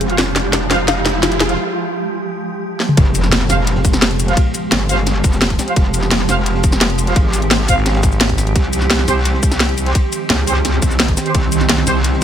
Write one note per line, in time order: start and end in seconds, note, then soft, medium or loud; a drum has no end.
0.00 0.17 F1 medium
0.00 2.93 F3 medium
0.00 2.93 G#3 medium
0.00 2.93 G4 medium
0.00 0.06 G#4 medium
0.00 closed hi-hat medium
0.00 riser medium
0.10 0.14 F4 medium
0.10 0.14 C5 medium
0.10 0.14 F5 medium
0.10 closed hi-hat soft
0.18 1.56 F1 loud
0.18 0.27 F4 medium
0.18 snare medium
0.18 closed hi-hat medium
0.36 snare medium
0.36 closed hi-hat medium
0.53 snare medium
0.53 closed hi-hat medium
0.71 0.75 F4 medium
0.71 0.75 C5 medium
0.71 0.75 F5 loud
0.71 snare medium
0.71 closed hi-hat medium
0.88 0.93 F5 loud
0.88 snare medium
0.88 closed hi-hat medium
1.06 snare medium
1.06 closed hi-hat medium
1.23 1.32 F4 medium
1.23 snare medium
1.23 closed hi-hat medium
1.32 closed hi-hat soft
1.40 1.46 G#4 medium
1.40 snare medium
1.40 closed hi-hat medium
1.49 1.54 F4 medium
1.49 1.54 C5 medium
1.49 1.54 F5 medium
1.49 closed hi-hat soft
2.80 snare medium
2.89 mid tom medium
2.97 3.48 F1 loud
2.97 8.52 F3 medium
2.97 8.52 G#3 medium
2.97 11.31 G4 medium
2.97 kick loud
2.97 closed hi-hat loud
2.97 ride medium
2.97 impact medium
3.06 ride soft
3.15 closed hi-hat medium
3.15 ride medium
3.15 shaker medium
3.24 snare soft
3.32 snare loud
3.32 closed hi-hat loud
3.32 ride medium
3.41 snare soft
3.50 4.36 F1 loud
3.50 3.54 F4 medium
3.50 3.54 C5 medium
3.50 3.54 F5 loud
3.50 snare medium
3.50 closed hi-hat medium
3.50 ride medium
3.50 shaker medium
3.67 closed hi-hat loud
3.67 ride medium
3.75 snare medium
3.85 kick loud
3.85 closed hi-hat medium
3.85 ride medium
3.85 shaker medium
3.93 snare medium
3.93 shaker soft
4.02 snare loud
4.02 closed hi-hat loud
4.02 ride medium
4.10 closed hi-hat soft
4.10 ride soft
4.19 closed hi-hat medium
4.19 ride medium
4.19 shaker medium
4.28 4.33 F4 medium
4.28 4.33 C5 medium
4.28 4.33 F5 medium
4.28 closed hi-hat soft
4.37 kick loud
4.37 closed hi-hat loud
4.37 ride loud
4.54 closed hi-hat medium
4.54 ride medium
4.54 shaker medium
4.71 5.23 G1 loud
4.71 snare loud
4.71 closed hi-hat loud
4.71 ride medium
4.89 4.94 F4 medium
4.89 4.94 C5 medium
4.89 4.94 F5 loud
4.89 open hi-hat medium
4.89 ride medium
4.89 shaker medium
4.98 snare soft
5.06 snare medium
5.06 closed hi-hat loud
5.06 ride medium
5.24 5.58 F1 loud
5.24 kick loud
5.24 closed hi-hat medium
5.24 ride medium
5.24 shaker medium
5.33 snare soft
5.33 shaker soft
5.42 snare loud
5.42 closed hi-hat loud
5.50 kick medium
5.50 closed hi-hat soft
5.59 snare loud
5.59 snare soft
5.59 closed hi-hat medium
5.59 ride medium
5.59 shaker medium
5.68 5.72 F4 medium
5.68 5.72 C5 medium
5.68 5.72 F5 medium
5.68 closed hi-hat soft
5.68 ride soft
5.76 6.27 F1 loud
5.76 kick loud
5.76 closed hi-hat loud
5.76 ride medium
5.86 ride soft
5.94 closed hi-hat medium
5.94 ride medium
5.94 shaker medium
6.03 snare soft
6.11 snare loud
6.11 closed hi-hat medium
6.11 ride medium
6.20 snare soft
6.29 7.15 F1 loud
6.29 6.33 F4 medium
6.29 6.33 C5 medium
6.29 6.33 F5 loud
6.29 snare soft
6.29 closed hi-hat medium
6.29 ride medium
6.29 shaker medium
6.46 closed hi-hat medium
6.46 ride medium
6.54 snare soft
6.64 kick loud
6.64 closed hi-hat medium
6.64 ride medium
6.64 shaker medium
6.72 snare medium
6.72 shaker soft
6.81 snare loud
6.81 closed hi-hat medium
6.81 ride loud
6.90 closed hi-hat soft
6.90 ride soft
6.98 closed hi-hat medium
6.98 ride medium
6.98 shaker medium
7.07 7.12 F4 medium
7.07 7.12 C5 medium
7.07 7.12 F5 medium
7.07 closed hi-hat soft
7.16 7.67 G#1 loud
7.16 kick loud
7.16 closed hi-hat medium
7.16 ride medium
7.33 closed hi-hat medium
7.33 ride medium
7.33 shaker medium
7.42 closed hi-hat soft
7.51 snare loud
7.51 closed hi-hat medium
7.51 ride medium
7.68 8.54 G#1 medium
7.68 7.73 F4 medium
7.68 7.73 C5 medium
7.68 7.73 F5 loud
7.68 kick medium
7.68 open hi-hat medium
7.68 ride medium
7.68 shaker medium
7.77 snare soft
7.85 snare medium
7.85 snare soft
7.85 closed hi-hat medium
7.85 ride medium
7.90 snare medium
7.90 ride medium
7.95 snare loud
7.95 ride medium
8.03 kick loud
8.03 closed hi-hat medium
8.03 ride medium
8.03 shaker medium
8.12 ride soft
8.12 shaker soft
8.21 snare loud
8.21 closed hi-hat medium
8.21 ride medium
8.29 kick medium
8.29 snare soft
8.29 closed hi-hat soft
8.38 snare soft
8.38 closed hi-hat medium
8.38 ride medium
8.38 shaker medium
8.47 closed hi-hat soft
8.47 ride soft
8.56 9.07 C2 medium
8.56 12.24 D#3 medium
8.56 12.24 C4 medium
8.56 kick loud
8.56 closed hi-hat medium
8.56 ride medium
8.65 ride soft
8.73 closed hi-hat medium
8.73 ride medium
8.73 shaker medium
8.82 snare soft
8.90 snare loud
8.90 closed hi-hat medium
8.90 ride medium
8.99 snare soft
9.08 9.94 C2 loud
9.08 9.12 C4 medium
9.08 9.12 G4 medium
9.08 9.12 C5 loud
9.08 snare soft
9.08 closed hi-hat medium
9.08 ride medium
9.08 shaker medium
9.25 closed hi-hat medium
9.25 ride loud
9.34 snare soft
9.43 kick loud
9.43 closed hi-hat medium
9.43 ride medium
9.43 shaker medium
9.52 snare medium
9.52 shaker soft
9.60 snare loud
9.60 closed hi-hat medium
9.60 ride medium
9.69 closed hi-hat soft
9.69 ride soft
9.78 closed hi-hat medium
9.78 ride medium
9.78 shaker medium
9.86 9.91 C4 medium
9.86 9.91 G4 medium
9.86 9.91 C5 medium
9.86 closed hi-hat soft
9.95 kick loud
9.95 closed hi-hat loud
9.95 ride medium
10.12 closed hi-hat medium
10.12 ride medium
10.12 shaker medium
10.30 10.81 C#2 loud
10.30 snare loud
10.30 closed hi-hat loud
10.30 ride medium
10.47 10.52 C4 medium
10.47 10.52 G4 medium
10.47 10.52 C5 loud
10.47 open hi-hat medium
10.47 ride medium
10.47 shaker medium
10.56 snare soft
10.65 snare soft
10.65 closed hi-hat loud
10.65 ride medium
10.82 11.16 C2 loud
10.82 kick loud
10.82 closed hi-hat medium
10.82 ride medium
10.82 shaker medium
10.91 snare soft
10.91 shaker soft
11.00 snare loud
11.00 closed hi-hat medium
11.08 kick medium
11.08 closed hi-hat soft
11.17 snare loud
11.17 snare soft
11.17 closed hi-hat medium
11.17 ride medium
11.17 shaker medium
11.26 11.30 C4 medium
11.26 11.30 G4 medium
11.26 11.30 C5 medium
11.26 closed hi-hat soft
11.26 ride soft
11.34 11.86 C2 loud
11.34 12.24 F4 medium
11.34 kick loud
11.34 closed hi-hat loud
11.34 ride loud
11.44 ride soft
11.52 closed hi-hat medium
11.52 ride medium
11.52 shaker medium
11.61 snare soft
11.69 snare loud
11.69 closed hi-hat loud
11.69 ride medium
11.78 snare soft
11.87 12.24 C2 loud
11.87 11.92 C4 medium
11.87 11.92 G4 medium
11.87 11.92 C5 loud
11.87 snare soft
11.87 closed hi-hat medium
11.87 ride medium
11.87 shaker medium
12.04 closed hi-hat loud
12.04 ride medium
12.13 snare medium